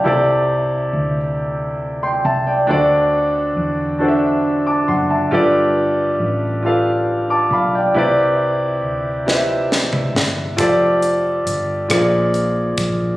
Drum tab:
HH |------------|------------|------------|------------|
SD |------------|------------|------------|------o-o-o-|
T2 |------------|------------|------------|---------o--|
BD |------------|------------|------------|------------|

HH |x-x-x-x-x-x-|
SD |------r-----|
T2 |------------|
BD |o---------o-|